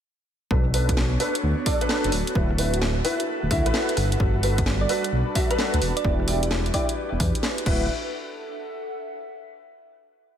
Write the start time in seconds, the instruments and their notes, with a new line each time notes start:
0.51 detuned saw bass B1, ambient pad B3, grand piano D4 A4 B4, analog synth pad D4 F#4 A4 C#5, kick
0.74 grand piano D4 A4 B4, open hi-hat
0.89 kick, closed hi-hat
0.97 snare
1.04 ambient pad F#4
1.20 grand piano D4 A4 B4, open hi-hat
1.35 closed hi-hat
1.43 detuned saw bass D2
1.66 grand piano D4 A4 D5, kick, open hi-hat
1.81 grand piano D4 A4 B4, cross-stick, closed hi-hat
1.89 snare
2.04 detuned saw bass F#1, closed hi-hat
2.12 detuned saw bass D1, ambient pad D4, analog synth pad E4 B4, open hi-hat
2.27 closed hi-hat
2.35 detuned saw bass D1, grand piano E4 F#4 B4, kick
2.51 cross-stick
2.58 grand piano E4 F#4 B4, open hi-hat
2.74 ambient pad A4, closed hi-hat
2.82 snare
2.96 ambient pad E5 F#5
3.05 grand piano E4 F#4 B4, open hi-hat
3.20 closed hi-hat
3.43 detuned saw bass D1
3.51 detuned saw bass D2, grand piano E4 F#4 E5, kick, cross-stick, open hi-hat
3.66 detuned saw bass A1, grand piano E4 F#4 B4, closed hi-hat
3.74 snare
3.89 closed hi-hat
3.97 detuned saw bass G1, ambient pad G3, analog synth pad D4 F#4, cross-stick, open hi-hat
4.12 closed hi-hat
4.17 detuned saw bass G1, grand piano F#4 A4 B4, ambient pad D5, kick
4.43 grand piano F#4 A4 B4, open hi-hat
4.58 kick, closed hi-hat
4.63 ambient pad A5, snare
4.81 synth pluck D5, ambient pad B5
4.89 grand piano F#4 A4 B4, open hi-hat
5.04 closed hi-hat
5.12 detuned saw bass B1
5.35 grand piano F#4 A4 E5, kick, open hi-hat
5.51 grand piano F#4 A4 B4, synth pluck B4, cross-stick, closed hi-hat
5.59 snare
5.74 detuned saw bass D2, closed hi-hat
5.82 detuned saw bass E1, ambient pad E4, analog synth pad G4, open hi-hat
5.97 synth pluck D5, closed hi-hat
6.03 detuned saw bass E1, grand piano E4 G4 D5, ambient pad B4, kick
6.20 cross-stick
6.28 grand piano E4 G4 D5, open hi-hat
6.43 closed hi-hat
6.51 snare
6.66 closed hi-hat
6.74 grand piano E4 G4 D5, synth pluck D5, kick, open hi-hat
6.89 closed hi-hat
7.12 detuned saw bass E1
7.20 detuned saw bass E2, kick, cross-stick, open hi-hat
7.35 closed hi-hat
7.43 snare
7.58 closed hi-hat
7.66 detuned saw bass D1, ambient pad D4, grand piano E4 F#4 B4, kick, crash
7.75 ambient pad A4
8.06 ambient pad E5
8.11 ambient pad F#5